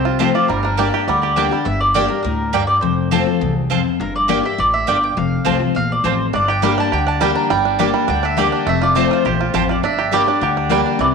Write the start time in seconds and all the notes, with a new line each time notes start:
Already playing: C2 C3 C4 G4 C5
0.05 F4
0.19 F3 A3 C4 F4 G4 C5 A5
0.35 F4 D5
0.48 G1 G2 G3 A#4
0.63 D4 A#4
0.77 G3 A#3 D4 G4 D5 G5
0.94 G4
1.08 D2 D3 G3 D5
1.22 G4 D5
1.36 G3 A#3 D4 G4 D5 G5
1.51 G3 D4 G4
1.65 G1 G2 E5
1.80 D5
1.94 G3 A#3 D4 G4 D5 G5
2.09 D4 G4 A#4
2.23 D2 A2 A#4
2.53 G2 A#3 G4 D5 G5
2.67 D5
2.81 F1 F2 C5
3.11 F3 A3 C4 F4 A4 C5 A5
3.26 C4 F4
3.41 C2 E2
3.70 F2 C4 F4 C5 A5
4.00 G1 G2 A#4
4.16 D5
4.28 G3 A#3 D4 G4 D5 G5
4.43 D4 G4 E5
4.58 A1 A2 D5
4.74 E5
4.87 G1 G2 A#3 G4 D5 G5
5.04 G5
5.17 F1 F2 F5
5.45 C2 F3 A3 C4 F4 C5 A5
5.59 C4 F4
5.75 A#1 E2 F5
5.92 D5
6.04 A1 F2 C4 F4 C5 A5
6.33 G1 G2 D4 D5
6.48 G4 G5
6.62 G3 A#3 D4 G4 D5 G5
6.78 D4 A5
6.92 D2 D3 G4 G5
7.07 D4 A5
7.20 G3 A#3 D4 G4 D5 G5
7.35 D4 A#5
7.50 G1 G2 G3 G5
7.65 D4
7.79 G3 A#3 D4 G4 D5 G5
7.94 G3
8.08 D2 D3 D4 G5
8.23 D4 E5
8.37 G3 A#3 D4 G4 D5 G5
8.52 D4
8.67 F1 F2 A3 E5
8.82 F4 D5
8.95 F3 A3 C4 F4 C5 A5
9.11 F4 C5
9.25 A#1 E2 G4 C5
9.41 F4
9.54 A1 F2 C4 F4 G4 C5 A5
9.69 F4 D5
9.83 G1 G2 D4 E5
9.98 G4
10.11 G3 A#3 D4 G4 D5 G5
10.26 D4 G4
10.41 D2 D3 G4
10.57 D4
10.69 G3 A#3 D4 G4 D5 G5
10.86 D4
10.99 C2 C3 E3 D5